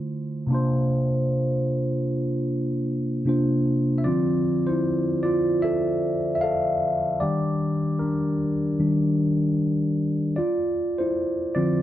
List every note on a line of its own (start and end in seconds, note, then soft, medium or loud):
0.00 0.44 D3 medium
0.00 0.45 A3 medium
0.00 0.46 E4 medium
0.00 0.47 F4 medium
0.00 0.48 C5 medium
0.47 3.21 C3 medium
0.47 3.21 A#3 medium
0.47 3.23 D4 medium
0.52 3.23 F4 medium
0.52 3.25 C5 medium
3.25 4.04 C3 medium
3.25 4.05 A#3 soft
3.25 4.05 D4 medium
3.25 4.05 F4 medium
3.29 4.06 C5 medium
3.98 4.05 E5 medium
4.04 7.17 D3 medium
4.04 7.17 F3 medium
4.04 7.18 C4 medium
4.04 4.64 F4 medium
4.04 4.69 D5 medium
4.67 5.20 E4 medium
4.67 5.25 C5 medium
5.23 5.61 F4 medium
5.23 5.60 D5 medium
5.62 6.33 A4 medium
5.62 6.34 E5 loud
6.35 6.42 E5 medium
6.41 7.18 A4 medium
6.41 7.17 F5 loud
7.20 8.35 D#3 medium
7.20 8.36 G3 medium
7.20 8.00 D4 medium
7.20 7.97 G4 medium
7.20 8.02 D5 loud
7.99 8.79 D4 medium
7.99 9.14 A#4 medium
8.79 9.15 D#3 soft
8.79 9.15 G3 soft
8.79 9.15 D4 medium
10.36 10.96 F4 medium
10.36 11.01 D5 medium
10.98 11.52 E4 medium
10.98 11.57 C5 medium
11.55 11.82 D3 medium
11.55 11.82 F3 soft
11.55 11.82 C4 medium
11.55 11.82 F4 medium
11.55 11.82 D5 medium